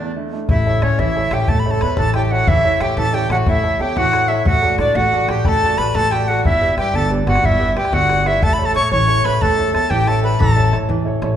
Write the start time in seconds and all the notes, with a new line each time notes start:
Already playing: D4 E4 D5
0.00 E2
0.16 A3 D4 E4
0.33 A3 D4 E4
0.49 A1 A3 E4 E5, bodhran
0.66 E4 A4 C#5
0.82 A2 C#4 E4 A4 C#5, bodhran
0.91 bodhran
0.99 A1 E3 E4 E5, bodhran
1.15 E4 A4 C#5, bodhran
1.31 A1 E4 G4 A4 C#5 G5, bodhran
1.48 A1 A3 A4 A5, bodhran
1.60 B5
1.64 E4 A4 C#5, bodhran
1.71 A4 A5
1.81 E2 E4 A4 B4 C#5 B5, bodhran
1.97 A1 E3 A4 A5, bodhran
2.14 E4 G4 A4 C#5 G5, bodhran
2.26 G5
2.31 E4 F#4 A4 C#5 F#5
2.47 A1 E3 E4 E5, bodhran
2.64 E4 A4 C#5
2.80 A2 E4 G4 A4 C#5 G5, bodhran
2.89 bodhran
2.97 A1 E3 A4 A5, bodhran
3.13 E4 G4 A4 C#5 G5, bodhran
3.30 A1 E4 F#4 A4 C#5 F#5, bodhran
3.46 A1 A3 E4 E5, bodhran
3.63 E4 A4 C#5, bodhran
3.79 E2 E4 G4 A4 C#5 G5
3.96 A1 E3 F#4 F#5, bodhran
4.13 E4 A4 C#5, bodhran
4.28 E4 A4 C#5 E5
4.45 A1 A3 F#4 F#5, bodhran
4.62 F#4 A4 D5
4.78 A2 D4 F#4 A4 D5, bodhran
4.87 bodhran
4.95 A1 A3 F#4 F#5, bodhran
5.12 F#4 A4 D5, bodhran
5.28 A1 F#4 G4 A4 D5 G5, bodhran
5.45 A1 A3 A4 A5 B5, bodhran
5.62 F#4 A4 D5, bodhran
5.78 A1 F#4 A4 B4 D5 B5, bodhran
5.95 A1 A3 A4 A5, bodhran
6.11 F#4 G4 A4 D5 G5, bodhran
6.28 F#4 A4 D5 F#5
6.44 G1 G3 E4 E5, bodhran
6.61 G4 B4 D5
6.78 G2 G4 B4 D5 G5, bodhran
6.86 bodhran
6.94 G1 D3 A4 A5, bodhran
7.10 G4 B4 D5, bodhran
7.27 G1 F#4 G4 B4 D5 F#5, bodhran
7.35 bodhran
7.43 G1 G3 E4 E5, bodhran
7.59 G4 B4 D5, bodhran
7.76 D2 G4 B4 D5 G5, bodhran
7.85 bodhran
7.92 G1 D3 F#4 F#5, bodhran
8.09 G4 B4 D5, bodhran
8.26 E4 G4 B4 D5 E5, bodhran
8.42 A1 A3 A4 A5, bodhran
8.53 B5
8.58 E4 A4 C#5
8.64 A4 A5
8.75 A2 E4 A4 C#5 C#6, bodhran
8.84 bodhran
8.92 A1 E3 C#5 C#6, bodhran
9.07 E4 A4 C#5, bodhran
9.25 A1 E4 A4 B4 C#5 B5, bodhran
9.41 A1 A3 A4 A5, bodhran
9.58 E4 A4 C#5, bodhran
9.74 E2 E4 A4 C#5 A5, bodhran
9.90 A1 E3 G4 G5, bodhran
10.07 E4 A4 C#5 A5, bodhran
10.23 E4 A4 B4 C#5 B5
10.40 A1 E3 A4 A5, bodhran
10.56 E4 A4 C#5
10.72 A2 E4 A4 C#5, bodhran
10.82 bodhran
10.89 A1 E3, bodhran
11.05 E4 A4 C#5, bodhran
11.22 A1 E4 A4 C#5, bodhran